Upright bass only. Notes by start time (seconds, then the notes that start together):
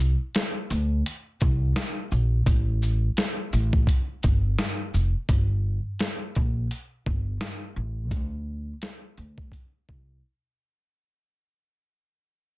Already playing: C2
0.71 D2
1.42 C2
2.12 A#1
2.47 A1
3.53 A1
4.24 G1
4.94 F1
5.29 G1
6.37 A#1
7.07 G1
7.76 A1
8.11 D2
9.18 D2
9.89 C2